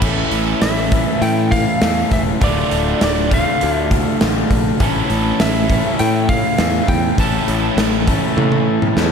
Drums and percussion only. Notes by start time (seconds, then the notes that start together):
0.02 kick, crash
0.31 open hi-hat
0.62 snare, open hi-hat
0.92 kick, open hi-hat
1.22 open hi-hat
1.52 kick, open hi-hat
1.82 snare, open hi-hat
2.11 kick, open hi-hat
2.41 kick, open hi-hat
2.71 open hi-hat
3.01 snare, open hi-hat
3.31 kick, open hi-hat
3.61 open hi-hat
3.91 kick, open hi-hat
4.21 snare, open hi-hat
4.51 kick, open hi-hat
4.80 kick, open hi-hat
5.10 open hi-hat
5.40 snare, open hi-hat
5.70 kick, open hi-hat
5.99 open hi-hat
6.29 kick, open hi-hat
6.58 snare, open hi-hat
6.88 kick, open hi-hat
7.18 kick, open hi-hat
7.48 open hi-hat
7.78 snare, open hi-hat
8.08 kick, open hi-hat
8.38 high tom
8.52 high tom
8.82 mid tom
8.97 snare